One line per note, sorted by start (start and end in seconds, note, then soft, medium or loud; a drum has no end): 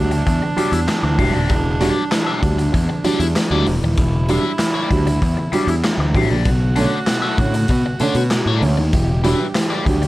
0.00 0.22 D2 medium
0.00 0.11 F#3 medium
0.00 3.62 D4 medium
0.10 0.17 G3 soft
0.10 0.17 D4 soft
0.10 muted overdriven electric guitar stroke soft
0.10 closed hi-hat medium
0.26 0.40 E2 loud
0.26 muted overdriven electric guitar stroke soft
0.26 kick medium
0.26 closed hi-hat medium
0.42 muted overdriven electric guitar stroke medium
0.56 0.72 F#3 medium
0.56 0.72 G3 medium
0.56 0.72 D4 loud
0.56 0.79 E4 medium
0.56 0.72 G4 medium
0.56 0.71 D5 medium
0.56 muted picked electric bass stroke soft
0.56 closed hi-hat medium
0.72 0.86 E2 loud
0.72 muted overdriven electric guitar stroke medium
0.72 closed hi-hat medium
0.88 0.94 G3 soft
0.88 0.94 D4 soft
0.88 muted overdriven electric guitar stroke soft
0.88 snare loud
0.88 clap medium
0.88 closed hi-hat medium
1.03 1.17 D2 medium
1.03 1.18 E3 medium
1.03 muted overdriven electric guitar stroke soft
1.18 1.32 E1 loud
1.18 1.34 F#3 medium
1.18 1.34 G3 medium
1.18 1.34 D4 medium
1.18 1.34 E4 medium
1.18 1.34 G4 medium
1.18 1.33 E5 medium
1.18 kick medium
1.18 open hi-hat medium
1.34 1.50 D#1 medium
1.34 1.52 E4 medium
1.34 1.52 G4 medium
1.34 1.51 D5 medium
1.49 1.90 E1 loud
1.49 1.65 E3 medium
1.49 kick loud
1.49 closed hi-hat medium
1.80 1.96 F#3 loud
1.80 1.94 G3 loud
1.80 1.94 D4 loud
1.80 2.02 E4 medium
1.80 2.03 G4 medium
1.80 2.03 D5 medium
1.80 closed hi-hat medium
1.96 2.02 G3 soft
1.96 2.02 D4 soft
2.11 2.27 E3 medium
2.11 muted overdriven electric guitar stroke soft
2.11 snare loud
2.11 clap medium
2.11 closed hi-hat loud
2.26 2.41 E4 medium
2.26 2.41 G4 medium
2.26 2.42 E5 medium
2.42 2.69 D2 medium
2.42 2.58 F#3 medium
2.42 2.57 G3 medium
2.42 2.57 D4 medium
2.42 muted overdriven electric guitar stroke soft
2.42 kick loud
2.42 closed hi-hat medium
2.58 2.65 G3 soft
2.58 2.64 D4 soft
2.58 muted overdriven electric guitar stroke soft
2.58 closed hi-hat medium
2.72 2.87 E2 medium
2.72 muted overdriven electric guitar stroke soft
2.72 kick medium
2.72 closed hi-hat medium
2.89 muted overdriven electric guitar stroke soft
3.04 3.20 F#3 medium
3.04 3.20 G3 medium
3.04 3.20 D4 loud
3.04 3.26 E4 loud
3.04 3.20 G4 medium
3.04 3.19 D5 loud
3.04 muted picked electric bass stroke soft
3.04 closed hi-hat medium
3.20 3.33 E2 loud
3.20 muted overdriven electric guitar stroke soft
3.20 closed hi-hat medium
3.36 muted overdriven electric guitar stroke soft
3.36 snare loud
3.36 clap medium
3.36 closed hi-hat loud
3.51 3.64 D2 medium
3.51 3.67 F#3 medium
3.51 3.67 G3 medium
3.51 3.67 D4 medium
3.51 3.66 E4 medium
3.51 3.66 G4 medium
3.51 3.66 D5 medium
3.66 3.80 E1 medium
3.66 muted overdriven electric guitar stroke soft
3.66 open hi-hat medium
3.82 3.95 D#1 loud
3.82 3.97 E3 medium
3.82 muted overdriven electric guitar stroke medium
3.97 4.37 E1 loud
3.97 4.13 E3 medium
3.97 6.11 E4 medium
3.97 kick loud
3.97 closed hi-hat medium
4.29 4.44 F#3 medium
4.29 4.43 G3 medium
4.29 4.43 D4 loud
4.29 4.50 E4 medium
4.29 4.51 G4 medium
4.29 4.51 E5 loud
4.29 closed hi-hat medium
4.44 4.50 G3 soft
4.44 4.50 D4 soft
4.59 4.75 E3 medium
4.59 muted overdriven electric guitar stroke soft
4.59 snare loud
4.59 clap medium
4.59 closed hi-hat loud
4.74 4.89 E4 medium
4.74 4.89 G4 medium
4.74 4.90 D5 medium
4.90 5.17 D2 medium
4.90 5.06 F#3 medium
4.90 5.05 G3 medium
4.90 5.05 D4 medium
4.90 muted overdriven electric guitar stroke soft
4.90 kick loud
4.90 closed hi-hat medium
5.07 5.13 G3 soft
5.07 5.13 D4 soft
5.07 muted overdriven electric guitar stroke soft
5.07 closed hi-hat medium
5.22 5.35 E2 loud
5.22 muted overdriven electric guitar stroke soft
5.22 kick medium
5.22 closed hi-hat medium
5.37 muted overdriven electric guitar stroke soft
5.52 5.68 F#3 loud
5.52 5.68 G3 medium
5.52 5.68 D4 loud
5.52 5.74 E4 medium
5.52 5.69 G4 medium
5.52 5.68 D5 medium
5.52 muted picked electric bass stroke soft
5.52 closed hi-hat medium
5.67 5.81 E2 loud
5.67 muted overdriven electric guitar stroke medium
5.67 closed hi-hat medium
5.84 5.90 G3 soft
5.84 5.90 D4 soft
5.84 muted overdriven electric guitar stroke soft
5.84 snare loud
5.84 clap medium
5.84 closed hi-hat medium
5.98 6.12 D2 medium
5.98 6.14 E3 medium
5.98 muted overdriven electric guitar stroke medium
6.14 6.28 A1 medium
6.14 6.30 F#3 medium
6.14 6.30 G3 medium
6.14 6.30 D4 medium
6.14 6.30 E4 medium
6.14 6.29 G4 medium
6.14 6.30 E5 medium
6.14 kick medium
6.14 open hi-hat medium
6.30 6.43 A#1 medium
6.30 6.47 E4 medium
6.30 6.47 G4 medium
6.30 6.47 D5 medium
6.45 6.85 B1 loud
6.45 6.61 B2 medium
6.45 8.58 F#4 medium
6.45 kick loud
6.45 closed hi-hat medium
6.76 6.92 D3 loud
6.76 6.91 A3 loud
6.76 6.91 C#4 loud
6.76 6.97 F#4 medium
6.76 6.98 A4 medium
6.76 6.98 D5 medium
6.76 closed hi-hat medium
6.92 6.98 A3 soft
6.92 6.98 C#4 soft
7.06 7.23 B2 medium
7.06 muted overdriven electric guitar stroke soft
7.06 snare loud
7.06 clap medium
7.06 closed hi-hat loud
7.22 7.37 F#4 medium
7.22 7.37 A4 medium
7.22 7.39 E5 medium
7.38 7.65 A2 medium
7.38 7.53 D3 medium
7.38 7.53 A3 medium
7.38 7.53 C#4 medium
7.38 muted overdriven electric guitar stroke soft
7.38 kick loud
7.38 closed hi-hat medium
7.54 7.60 A3 soft
7.54 7.60 C#4 soft
7.54 muted overdriven electric guitar stroke soft
7.54 closed hi-hat medium
7.68 7.82 B2 loud
7.68 muted overdriven electric guitar stroke soft
7.68 kick medium
7.68 closed hi-hat medium
7.86 muted overdriven electric guitar stroke soft
8.00 8.15 D3 loud
8.00 8.15 A3 medium
8.00 8.16 C#4 loud
8.00 8.22 F#4 medium
8.00 8.15 A4 medium
8.00 8.15 D5 medium
8.00 muted picked electric bass stroke soft
8.00 closed hi-hat medium
8.15 8.29 B2 medium
8.15 muted overdriven electric guitar stroke medium
8.15 closed hi-hat soft
8.31 8.47 B2 medium
8.31 muted overdriven electric guitar stroke soft
8.31 snare loud
8.31 clap medium
8.31 closed hi-hat loud
8.46 8.60 A2 medium
8.46 8.61 F#4 medium
8.46 8.61 A4 medium
8.46 8.62 D5 medium
8.61 8.75 D2 loud
8.61 8.77 D3 medium
8.61 8.76 A3 medium
8.61 8.76 C#4 medium
8.61 muted overdriven electric guitar stroke soft
8.61 open hi-hat medium
8.77 8.91 D#2 medium
8.77 8.84 A3 soft
8.77 8.84 C#4 soft
8.77 muted overdriven electric guitar stroke soft
8.93 9.33 E1 loud
8.93 9.08 E3 medium
8.93 10.07 G4 medium
8.93 kick loud
8.93 closed hi-hat medium
9.24 9.39 F#3 loud
9.24 9.39 G3 medium
9.24 9.39 D4 loud
9.24 9.45 G4 medium
9.24 9.46 B4 medium
9.24 9.46 E5 medium
9.24 closed hi-hat medium
9.40 9.46 G3 soft
9.40 9.46 D4 soft
9.55 9.71 E3 medium
9.55 muted overdriven electric guitar stroke soft
9.55 snare loud
9.55 clap medium
9.55 closed hi-hat loud
9.70 9.85 G4 medium
9.70 9.85 B4 medium
9.70 9.86 D5 medium
9.86 10.07 D2 medium
9.86 10.02 F#3 medium
9.86 10.01 G3 medium
9.86 10.00 D4 medium
9.86 muted overdriven electric guitar stroke soft
9.86 kick loud
9.86 closed hi-hat medium
10.02 10.07 G3 soft
10.02 10.07 D4 soft
10.02 muted overdriven electric guitar stroke soft
10.02 closed hi-hat medium